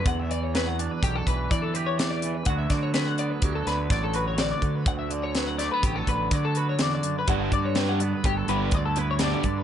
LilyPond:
<<
  \new Staff \with { instrumentName = "Clean electric guitar" } { \time 5/4 \key d \major \tempo 4 = 125 fis''16 e''16 d''16 cis''16 b'16 fis''16 d''16 b'16 g'16 a'16 b'8 d''16 a'16 b'16 cis''16 d''16 d''8 b'16 | fis''16 e''16 d''16 cis''16 b'16 fis''16 d''16 b'16 g'16 a'16 b'8 d''16 a'16 b'16 cis''16 d''16 d''8 b'16 | fis''16 e''16 d''16 cis''16 b'16 fis''16 d''16 b'16 g'16 a'16 b'8 d''16 a'16 b'16 cis''16 d''16 d''8 b'16 | fis''16 e''16 d''16 cis''16 b'16 fis''16 d''16 b'16 g'16 a'16 b'8 d''16 a'16 b'16 cis''16 d''16 d''8 b'16 | }
  \new Staff \with { instrumentName = "Overdriven electric guitar" } { \time 5/4 \key d \major r1 r4 | r1 r4 | r1 r4 | <g b d' g'>8 r8 <g b d' g'>8 r4 <g b d' g'>8 r4 <g b d' g'>8 r8 | }
  \new Staff \with { instrumentName = "Clean electric guitar" } { \clef bass \time 5/4 \key d \major << { fis4 fis8 d'8 fis4 r8 g'4. | <d fis b fis'>4 fis8 b8 fis4 fis8 fis'4. | r4 fis8 a16 b16 fis4 fis8 fis'4. | <d fis b fis'>4 fis8 b8 fis4 fis8 e'4. | } \\ { <e, d>8 e2 e4. e,8 e8 | d,8 d2 d4. d,8 d8 | d,8 d2 d4. e,8 fis,8 | g,8 d2 d4. g,8 d8 | } >> }
  \new Staff \with { instrumentName = "Fingered electric bass" } { \clef bass \time 5/4 \key d \major e,2 b,,8 b,,8 e2 | d,8 d4. d,8 d,8 a,,4. d8 | d,2 a,,8 a,,8 d2 | g,,8 g,4. g,,8 g,,8 d,4. g,8 | }
  \new DrumStaff \with { instrumentName = "Drums" } \drummode { \time 5/4 <hh bd>8 hh8 <hh sn>8 hh8 <hh bd>8 <hh bd>8 <hh bd>8 hh8 <hh sn>8 hh8 | <hh bd>8 <hh bd sn>8 <hh sn>8 hh8 <hh bd>8 <hh sn>8 <hh bd sn>8 hh8 <hh sn>8 <hh bd>8 | <hh bd>8 hh8 <hh sn>8 <hh sn>8 <hh bd>8 <hh bd>8 <hh bd>8 hh8 <hh sn>8 hh8 | <hh bd>8 <hh bd>8 <hh sn>8 hh8 <hh bd>8 hh8 <hh bd>8 hh8 <hh sn>8 <hh bd>8 | }
>>